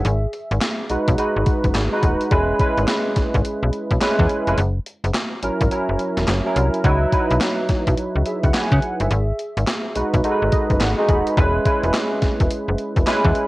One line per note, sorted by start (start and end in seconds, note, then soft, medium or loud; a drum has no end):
0.00 0.22 G#4 medium
0.00 0.22 E5 medium
0.05 0.27 G#1 loud
0.05 closed hi-hat medium
0.33 closed hi-hat medium
0.51 0.59 G#1 medium
0.51 closed hi-hat soft
0.61 snare loud
0.61 clap medium
0.61 closed hi-hat medium
0.89 0.97 B1 soft
0.89 1.17 G#3 medium
0.89 1.17 D#4 medium
0.89 1.17 F#4 medium
0.89 1.17 B4 medium
0.89 closed hi-hat medium
1.08 1.16 B1 medium
1.08 kick medium
1.08 closed hi-hat medium
1.18 1.87 G#3 medium
1.18 1.87 D#4 medium
1.18 1.87 F#4 medium
1.18 1.87 B4 medium
1.18 closed hi-hat medium
1.36 1.44 G#1 medium
1.46 kick medium
1.46 closed hi-hat medium
1.64 1.72 F#1 medium
1.64 kick medium
1.64 closed hi-hat soft
1.74 1.89 G#1 medium
1.74 snare loud
1.74 clap medium
1.74 closed hi-hat medium
1.92 2.29 G#3 medium
1.92 2.29 D#4 medium
1.92 2.30 F#4 medium
1.92 2.30 B4 medium
2.03 2.17 D#1 medium
2.03 kick medium
2.03 closed hi-hat medium
2.21 closed hi-hat soft
2.31 2.53 E1 loud
2.31 2.58 G#3 medium
2.31 2.58 C#4 medium
2.31 2.59 E4 medium
2.31 2.59 B4 medium
2.31 kick loud
2.31 closed hi-hat medium
2.59 3.68 G#3 medium
2.59 3.68 C#4 medium
2.59 3.68 E4 medium
2.59 3.68 B4 medium
2.59 kick medium
2.59 closed hi-hat medium
2.78 2.86 G#1 medium
2.78 closed hi-hat soft
2.88 snare loud
2.88 clap medium
2.88 closed hi-hat medium
3.16 3.24 G#1 soft
3.16 kick medium
3.16 snare medium
3.16 closed hi-hat medium
3.34 3.42 G#1 loud
3.34 kick medium
3.34 closed hi-hat medium
3.45 closed hi-hat medium
3.63 3.71 B1 medium
3.73 closed hi-hat medium
3.91 3.99 B1 medium
3.91 kick medium
3.91 closed hi-hat soft
4.01 4.44 G#3 loud
4.01 4.44 C#4 medium
4.01 4.44 E4 medium
4.01 4.45 B4 loud
4.01 snare medium
4.01 clap medium
4.01 closed hi-hat medium
4.19 4.27 E2 loud
4.19 kick medium
4.29 closed hi-hat medium
4.47 4.55 F1 medium
4.47 4.58 G#3 medium
4.47 4.58 C#4 medium
4.47 4.58 E4 medium
4.47 4.58 B4 medium
4.47 closed hi-hat soft
4.58 4.80 F#1 loud
4.58 closed hi-hat medium
4.86 closed hi-hat medium
5.04 5.12 F#1 medium
5.04 closed hi-hat soft
5.14 snare loud
5.14 clap medium
5.14 closed hi-hat medium
5.43 5.50 G#1 soft
5.43 5.70 F#3 medium
5.43 5.70 C#4 medium
5.43 5.70 E4 medium
5.43 5.70 A#4 medium
5.43 closed hi-hat medium
5.61 5.69 G#1 medium
5.61 kick medium
5.61 closed hi-hat medium
5.71 6.40 F#3 medium
5.71 6.40 C#4 medium
5.71 6.40 E4 medium
5.71 6.40 A#4 medium
5.71 closed hi-hat medium
5.89 5.97 F#1 medium
5.99 closed hi-hat medium
6.17 6.25 E1 medium
6.17 snare medium
6.17 closed hi-hat soft
6.27 6.41 F#1 medium
6.27 snare medium
6.27 clap medium
6.27 closed hi-hat medium
6.46 6.82 F#3 medium
6.46 6.82 C#4 medium
6.46 6.83 E4 medium
6.46 6.83 A#4 medium
6.56 6.70 C2 medium
6.56 closed hi-hat medium
6.74 closed hi-hat medium
6.84 7.06 C#2 loud
6.84 7.11 F#3 medium
6.84 7.11 D#4 medium
6.84 7.12 E4 medium
6.84 7.12 B4 loud
6.84 kick loud
6.84 closed hi-hat medium
7.13 8.20 F#3 medium
7.13 8.21 D#4 medium
7.13 8.21 E4 medium
7.13 8.21 B4 medium
7.13 kick medium
7.13 closed hi-hat medium
7.31 7.39 B1 loud
7.31 closed hi-hat soft
7.41 snare loud
7.41 clap medium
7.41 closed hi-hat medium
7.69 7.76 B1 soft
7.69 kick medium
7.69 snare medium
7.69 closed hi-hat medium
7.87 7.95 B1 medium
7.87 kick medium
7.87 closed hi-hat medium
7.98 closed hi-hat medium
8.16 8.23 C#2 medium
8.26 8.43 G#4 medium
8.26 8.43 E5 medium
8.26 closed hi-hat medium
8.44 8.52 C#2 medium
8.44 8.54 F#5 medium
8.44 kick medium
8.44 closed hi-hat soft
8.54 8.72 B4 medium
8.54 8.71 G#5 medium
8.54 snare loud
8.54 clap medium
8.54 closed hi-hat medium
8.72 8.80 C#3 loud
8.72 8.99 F#5 medium
8.72 kick medium
8.82 closed hi-hat medium
9.00 9.08 G1 medium
9.00 9.28 G#4 medium
9.00 9.27 E5 medium
9.00 closed hi-hat medium
9.11 9.33 G#1 loud
9.11 closed hi-hat medium
9.39 closed hi-hat medium
9.57 9.65 G#1 medium
9.57 closed hi-hat soft
9.67 snare loud
9.67 clap medium
9.67 closed hi-hat medium
9.96 10.03 B1 soft
9.96 10.22 G#3 medium
9.96 10.23 D#4 medium
9.96 10.23 F#4 medium
9.96 10.23 B4 medium
9.96 closed hi-hat medium
10.14 10.22 B1 medium
10.14 kick medium
10.14 closed hi-hat medium
10.24 10.93 G#3 medium
10.24 10.93 D#4 medium
10.24 10.93 F#4 medium
10.24 10.33 A4 medium
10.24 closed hi-hat medium
10.32 10.96 B4 medium
10.42 10.50 G#1 medium
10.52 10.79 D#5 medium
10.52 kick medium
10.52 closed hi-hat medium
10.70 10.78 F#1 medium
10.70 kick medium
10.70 closed hi-hat soft
10.80 10.94 G#1 medium
10.80 11.07 F#5 medium
10.80 snare medium
10.80 clap medium
10.80 closed hi-hat medium
10.98 11.35 G#3 medium
10.98 11.35 D#4 medium
10.98 11.35 F#4 medium
10.98 11.36 G#4 medium
11.08 11.22 D#1 medium
11.08 11.35 B5 medium
11.08 kick medium
11.08 closed hi-hat medium
11.27 closed hi-hat medium
11.37 11.59 E1 loud
11.37 11.64 G#3 medium
11.37 11.64 C#4 medium
11.37 11.64 E4 medium
11.37 11.64 B4 loud
11.37 kick loud
11.37 closed hi-hat medium
11.65 12.73 G#3 medium
11.65 12.73 C#4 medium
11.65 12.74 E4 medium
11.65 12.74 B4 medium
11.65 kick medium
11.65 closed hi-hat medium
11.83 11.91 E1 medium
11.83 closed hi-hat soft
11.94 snare loud
11.94 clap medium
11.94 closed hi-hat medium
12.22 12.29 E1 soft
12.22 kick medium
12.22 snare medium
12.22 closed hi-hat medium
12.40 12.48 E1 medium
12.40 kick medium
12.40 closed hi-hat medium
12.51 closed hi-hat medium
12.68 12.76 F#1 medium
12.78 closed hi-hat medium
12.96 13.04 E1 medium
12.96 kick medium
12.96 closed hi-hat soft
13.07 13.47 G#3 loud
13.07 13.47 C#4 medium
13.07 13.47 E4 medium
13.07 13.47 B4 loud
13.07 snare loud
13.07 clap medium
13.07 closed hi-hat medium
13.25 13.33 E2 loud
13.25 kick medium
13.35 closed hi-hat medium